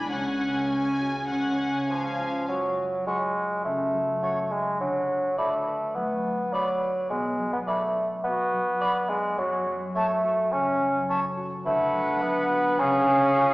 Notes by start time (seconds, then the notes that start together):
Already playing: B1 B2 G#3 D4 G#4 G#5 B5
0.12 C#2 C#3 C#4 F#5 G#5
0.41 C#4
0.71 G#4 G#5
1.00 F#4
1.30 C#3 C#4 F#5 G#5
1.60 C#4
1.89 F3 G#4 F5
2.19 F4
2.48 F#2 F#3 F#4
2.78 F#3
3.07 G#3 F#4 C#5 F#5
3.36 C#4
3.64 C#3 A3 C#4
3.93 F#3
4.22 F#4 C#5 F#5
4.51 G#3 C#4
4.80 D3 F#3 D4
5.09 D4
5.38 A3 F#4 D5 B5
5.67 B4
5.95 F#3 A3 B3
6.24 D4
6.53 F#3 F#4 D5 B5
6.82 B4
7.10 B2 G#3 B3
7.39 F#3
7.53 B3
7.67 A3 B4 D5 B5
7.96 D4
8.24 B3 F#4
8.53 F#3
8.81 B4 D5 B5
9.09 G#3 D4
9.38 F#2 F#3 F#4
9.66 F#3
9.95 A3 A4 C#5 A5
10.24 F#4
10.52 C#3 C#4
10.81 F#3
11.08 A4 C#5 A5
11.37 F#4
11.65 D3 A3 D4 B4 F#5
11.94 F#3
12.22 B3 B4
12.50 F#4
12.79 C#3 C#4 G#4 F5
13.08 C#4
13.37 F4